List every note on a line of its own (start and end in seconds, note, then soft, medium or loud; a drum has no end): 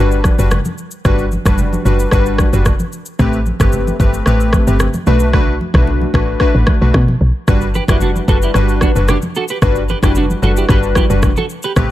0.00 0.30 G1 medium
0.00 0.35 G3 medium
0.00 0.35 D4 medium
0.00 0.35 F#4 medium
0.00 0.35 B4 loud
0.11 shaker soft
0.24 kick medium
0.24 cross-stick medium
0.24 high conga medium
0.24 shaker medium
0.38 0.60 F#1 medium
0.38 0.58 G3 medium
0.38 0.58 D4 medium
0.38 0.58 F#4 medium
0.38 0.59 B4 medium
0.38 shaker medium
0.51 cross-stick loud
0.51 high conga medium
0.51 low conga medium
0.51 shaker medium
0.65 high conga medium
0.65 shaker medium
0.78 shaker medium
0.91 shaker medium
1.05 1.37 G1 loud
1.05 1.25 G3 medium
1.05 1.25 D4 medium
1.05 1.25 F#4 medium
1.05 1.26 B4 loud
1.05 kick loud
1.05 cross-stick medium
1.05 low conga medium
1.05 shaker medium
1.19 shaker soft
1.32 high conga medium
1.32 shaker soft
1.46 1.77 F#1 medium
1.46 1.82 G3 medium
1.46 1.82 D4 medium
1.46 1.82 F#4 medium
1.46 1.82 B4 medium
1.46 kick medium
1.46 cross-stick medium
1.46 high conga medium
1.46 shaker loud
1.58 low conga medium
1.58 shaker medium
1.73 high conga medium
1.73 shaker soft
1.85 2.07 F#1 medium
1.85 2.10 G3 medium
1.85 2.10 D4 medium
1.85 2.10 F#4 medium
1.85 2.10 B4 medium
1.85 high conga medium
1.85 shaker medium
1.99 shaker medium
2.11 2.44 G1 medium
2.11 2.49 G3 medium
2.11 2.50 D4 medium
2.11 2.50 F#4 medium
2.11 2.50 B4 loud
2.11 kick medium
2.11 cross-stick medium
2.11 shaker medium
2.26 shaker medium
2.38 kick medium
2.38 cross-stick loud
2.38 high conga medium
2.38 shaker medium
2.53 2.74 F#1 medium
2.53 2.73 G3 medium
2.53 2.73 D4 medium
2.53 2.73 F#4 medium
2.53 2.73 B4 medium
2.53 shaker medium
2.65 kick medium
2.65 cross-stick medium
2.65 high conga medium
2.65 low conga medium
2.65 shaker medium
2.79 high conga medium
2.79 shaker medium
2.92 shaker medium
3.06 shaker medium
3.19 3.52 A1 loud
3.19 3.40 A3 medium
3.19 3.40 C4 medium
3.19 3.40 G4 medium
3.19 3.40 B4 loud
3.19 kick loud
3.19 cross-stick medium
3.19 low conga medium
3.19 shaker medium
3.33 shaker soft
3.46 high conga medium
3.46 shaker soft
3.60 3.91 G1 medium
3.60 3.96 A3 medium
3.60 3.97 C4 medium
3.60 3.97 G4 medium
3.60 3.97 B4 medium
3.60 kick loud
3.60 cross-stick medium
3.60 high conga medium
3.60 shaker loud
3.72 low conga medium
3.72 shaker medium
3.87 high conga medium
3.87 shaker soft
4.00 4.21 G1 medium
4.00 4.24 A3 medium
4.00 4.24 C4 medium
4.00 4.25 G4 medium
4.00 4.25 B4 medium
4.00 kick loud
4.00 high conga medium
4.00 shaker medium
4.14 shaker medium
4.26 4.59 A1 loud
4.26 4.64 A3 medium
4.26 4.64 C4 medium
4.26 4.64 G4 medium
4.26 4.64 B4 loud
4.26 cross-stick medium
4.26 shaker medium
4.40 shaker soft
4.53 kick medium
4.53 cross-stick loud
4.53 high conga medium
4.53 shaker medium
4.67 4.88 G1 medium
4.67 4.87 A3 medium
4.67 4.87 C4 medium
4.67 4.87 G4 medium
4.67 4.87 B4 medium
4.67 shaker medium
4.80 cross-stick loud
4.80 high conga medium
4.80 low conga medium
4.80 shaker medium
4.94 high conga medium
4.94 shaker medium
5.07 5.60 B1 loud
5.07 5.31 A3 medium
5.07 5.32 D4 medium
5.07 5.32 F#4 medium
5.07 5.32 B4 loud
5.07 shaker medium
5.20 shaker medium
5.33 5.54 A3 medium
5.33 5.54 D4 medium
5.33 5.54 F#4 medium
5.33 5.54 B4 loud
5.33 kick loud
5.33 cross-stick medium
5.33 low conga medium
5.61 high conga medium
5.74 6.05 B1 medium
5.74 6.11 A3 medium
5.74 6.11 D4 medium
5.74 6.11 F#4 medium
5.74 6.11 B4 medium
5.74 kick loud
5.74 cross-stick medium
5.74 high conga medium
5.87 low conga medium
6.01 high conga medium
6.14 6.35 A1 medium
6.14 6.39 A3 medium
6.14 6.39 D4 medium
6.14 6.39 F#4 medium
6.14 6.39 B4 medium
6.14 kick loud
6.14 cross-stick loud
6.14 high conga medium
6.40 6.78 A3 medium
6.40 6.78 D4 medium
6.40 6.78 F#4 medium
6.40 6.78 B4 loud
6.40 kick medium
6.40 cross-stick medium
6.55 6.65 A1 loud
6.67 kick medium
6.67 cross-stick loud
6.67 high conga medium
6.81 6.92 B1 medium
6.81 7.01 A3 medium
6.81 7.01 D4 medium
6.81 7.01 F#4 medium
6.81 7.01 B4 medium
6.94 7.15 B2 loud
6.94 kick medium
6.94 cross-stick loud
6.94 high conga medium
6.94 low conga medium
7.08 high conga medium
7.21 7.32 B1 loud
7.48 7.80 G1 loud
7.48 7.68 G3 medium
7.48 7.68 D4 medium
7.48 7.68 F#4 medium
7.48 7.68 B4 loud
7.48 kick loud
7.48 cross-stick loud
7.48 low conga medium
7.48 shaker medium
7.61 shaker soft
7.74 7.83 G4 medium
7.74 7.83 B4 medium
7.74 high conga medium
7.74 shaker soft
7.88 8.20 F#1 medium
7.88 8.25 G3 medium
7.88 8.25 D4 medium
7.88 7.97 E4 medium
7.88 8.25 F#4 medium
7.88 7.96 G4 medium
7.88 8.25 B4 medium
7.88 kick loud
7.88 cross-stick medium
7.88 high conga medium
7.88 shaker loud
8.01 8.10 D4 medium
8.01 8.10 F#4 medium
8.01 low conga medium
8.01 shaker medium
8.16 high conga medium
8.16 shaker medium
8.28 8.49 F#1 medium
8.28 8.53 G3 medium
8.28 8.53 D4 medium
8.28 8.53 F#4 medium
8.28 8.37 F#4 medium
8.28 8.37 A4 medium
8.28 8.53 B4 medium
8.28 kick loud
8.28 high conga medium
8.28 shaker medium
8.42 8.50 E4 medium
8.42 8.50 G4 medium
8.42 shaker medium
8.54 8.87 G1 medium
8.54 8.92 G3 medium
8.54 8.92 D4 medium
8.54 8.92 F#4 medium
8.54 8.93 B4 loud
8.54 cross-stick medium
8.54 shaker medium
8.69 shaker soft
8.81 8.91 D4 medium
8.81 8.90 F#4 medium
8.81 kick medium
8.81 cross-stick medium
8.81 high conga medium
8.81 shaker medium
8.95 9.17 F#1 medium
8.95 9.15 G3 medium
8.95 9.15 D4 medium
8.95 9.16 F#4 medium
8.95 9.16 B4 medium
8.95 shaker medium
9.08 9.18 D4 medium
9.08 9.17 G4 medium
9.08 cross-stick loud
9.08 high conga medium
9.08 low conga medium
9.08 shaker medium
9.22 high conga medium
9.22 shaker medium
9.35 9.44 F#4 medium
9.35 9.44 A4 medium
9.35 shaker medium
9.48 9.58 G4 medium
9.48 9.57 B4 medium
9.48 shaker medium
9.62 9.94 G1 loud
9.62 9.82 G3 medium
9.62 9.82 D4 medium
9.62 9.83 F#4 medium
9.62 9.83 B4 loud
9.62 kick loud
9.62 cross-stick medium
9.62 low conga medium
9.62 shaker medium
9.76 shaker soft
9.89 9.98 G4 medium
9.89 9.97 B4 medium
9.89 high conga medium
9.89 shaker soft
10.03 10.34 F#1 medium
10.03 10.39 G3 medium
10.03 10.39 D4 medium
10.03 10.11 E4 medium
10.03 10.39 F#4 medium
10.03 10.11 G4 medium
10.03 10.40 B4 medium
10.03 kick loud
10.03 cross-stick medium
10.03 high conga medium
10.03 shaker loud
10.15 10.25 D4 medium
10.15 10.24 F#4 medium
10.15 low conga medium
10.15 shaker medium
10.30 high conga medium
10.30 shaker medium
10.42 10.64 F#1 medium
10.42 10.67 G3 medium
10.42 10.67 D4 medium
10.42 10.67 F#4 medium
10.42 10.52 F#4 medium
10.42 10.51 A4 medium
10.42 10.67 B4 medium
10.42 high conga medium
10.42 shaker medium
10.57 10.65 E4 medium
10.57 10.64 G4 medium
10.57 shaker medium
10.69 11.01 G1 loud
10.69 11.06 G3 medium
10.69 11.07 D4 medium
10.69 11.07 F#4 medium
10.69 10.78 G4 medium
10.69 11.07 B4 loud
10.69 10.78 B4 medium
10.69 kick loud
10.69 cross-stick medium
10.69 shaker medium
10.83 shaker soft
10.95 11.05 E4 medium
10.95 11.04 G4 medium
10.95 kick medium
10.95 cross-stick loud
10.95 high conga medium
10.95 shaker medium
11.10 11.31 F#1 medium
11.10 11.30 G3 medium
11.10 11.30 D4 medium
11.10 11.30 F#4 medium
11.10 11.30 B4 medium
11.10 shaker medium
11.22 kick medium
11.22 cross-stick loud
11.22 high conga medium
11.22 low conga medium
11.22 shaker medium
11.37 11.45 F#4 medium
11.37 11.44 A4 medium
11.37 high conga medium
11.37 shaker medium
11.49 shaker medium
11.63 11.72 G4 medium
11.63 11.71 B4 medium
11.63 shaker medium
11.76 11.91 A1 loud
11.76 11.91 A3 medium
11.76 11.91 C4 medium
11.76 11.91 G4 medium
11.76 11.91 B4 loud
11.76 kick loud
11.76 cross-stick medium
11.76 low conga medium
11.76 shaker medium